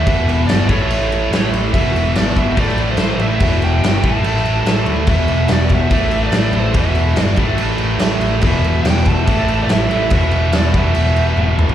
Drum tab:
CC |x-x-x-x-x-x-x-x-|x-x-x-x-x-x-x-x-|x-x-x-x-x-x-x-x-|x-x-x-x-x-x-x-x-|
SD |----o-------o---|----o----o--o---|----o----o--o---|----o-------o---|
T1 |----------------|----------------|----------------|----------------|
T2 |----------------|----------------|----------------|----------------|
FT |----------------|----------------|----------------|----------------|
BD |o-----o---------|o-----o-o-------|o-----o---------|o-----o-o-------|

CC |x-x-x-x-x-x-x-x-|x-x-x-x-x-x-x-x-|x-x-x-x-x-x-----|
SD |----o-------o---|----o-------o---|----o-----------|
T1 |----------------|----------------|------------o---|
T2 |----------------|----------------|--------------o-|
FT |----------------|----------------|---------------o|
BD |o-----o---------|o-----o-o-------|o-----o---------|